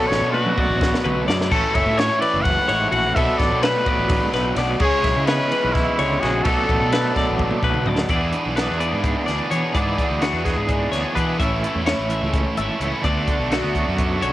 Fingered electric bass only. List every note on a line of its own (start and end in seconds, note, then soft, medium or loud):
0.10 0.21 A1 medium
0.22 0.44 B2 loud
0.69 0.91 A1 loud
1.04 1.26 B1 medium
1.28 1.50 F#2 medium
1.51 1.63 A1 medium
1.75 1.86 F#1 medium
1.86 2.09 A2 loud
2.34 2.56 F#1 loud
2.69 2.92 A1 medium
2.92 3.15 A#1 loud
3.17 3.28 B1 loud
3.40 3.51 A1 medium
3.52 3.74 B2 loud
3.98 4.20 A1 loud
4.33 4.56 B1 medium
4.57 4.79 B1 loud
4.80 4.92 C#2 medium
5.05 5.16 B1 medium
5.17 5.39 C#3 medium
5.64 5.86 B1 loud
5.99 6.21 C#2 medium
6.23 6.45 A#1 loud
6.45 6.57 B1 medium
6.70 6.81 A1 medium
6.81 7.03 B2 medium
7.30 7.51 A1 loud
7.63 7.85 B1 medium
7.87 8.09 D2 medium
8.09 8.32 E2 loud
8.46 8.68 B1 medium
8.70 8.92 E2 medium
8.93 9.15 G#2 medium
9.28 9.39 D2 medium
9.51 9.63 E3 medium
9.75 9.97 G#2 medium
10.10 10.32 D2 medium
10.33 10.56 E2 medium
10.57 10.90 G#2 loud
10.92 11.03 D2 medium
11.16 11.38 E3 medium
11.40 11.62 A1 medium
11.75 11.97 E2 loud
11.99 12.21 A1 medium
12.22 12.44 C#2 medium
12.57 12.69 G#1 medium
12.80 12.92 C#2 medium
13.04 13.27 D2 loud
13.39 13.62 B1 medium
13.63 13.85 D2 medium
13.88 14.21 F#2 medium
14.23 14.33 B1 medium